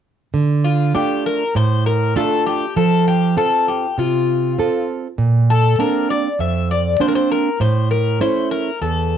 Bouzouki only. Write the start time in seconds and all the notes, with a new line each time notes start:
0.65 F4
0.95 G4
1.26 A#4
1.56 C5
1.86 A#4
2.16 A4
2.46 G4
2.77 A4
3.08 G4
3.37 A4
3.68 G4
3.99 F4
5.50 A4
5.80 A#4
6.10 D5
6.40 E5
6.71 D5
7.01 C5
7.08 A#4
7.15 C5
7.32 A#4
7.61 C5
7.91 A#4
8.21 C5
8.51 A#4
8.82 A4